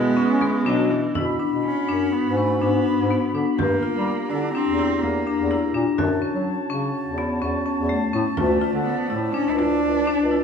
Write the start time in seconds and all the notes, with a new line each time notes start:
Already playing: B2 G#3 B3 E4 B4 G#5
0.17 C#4, frame drum
0.29 C#4
0.41 B3, frame drum
0.66 B2 F#3 D4
0.90 E3, frame drum
1.15 B2 E4 F#4 B5, frame drum
1.40 D4
1.51 B2
1.64 C#4
1.88 F#2 D4
2.12 B3
2.25 G#2
2.37 A3 C#4
2.62 G#2 B3 D4
2.86 D4
2.99 G#2
3.11 B3
3.34 D3 D4, frame drum
3.57 G2 A#3 G4 A#5, frame drum
3.83 F4
3.94 G3
4.30 D3 D4 E4
4.54 C4 D4
4.66 E2
4.79 E4, frame drum
5.02 E2 A#3
5.27 D4
5.39 E2
5.51 E4
5.74 A#2 D4, frame drum
5.98 F#2 F#4 C#5 A5, frame drum
6.22 C#4
6.34 F#3
6.70 C#3 C#4
7.06 E2
7.18 B3, frame drum
7.42 E2 C#4
7.66 C#4
7.78 E2
7.89 A3
8.13 A2 C#4, frame drum
8.37 D2 F3 A3 F4 D5, frame drum
8.62 F4, frame drum
8.74 D3
8.85 B3
9.08 A2 A3 E4, frame drum
9.32 C#4 D4
9.47 C#2 E4
9.57 D4 E4, frame drum
9.83 C#2
10.07 D4, frame drum
10.20 C#2
10.31 E4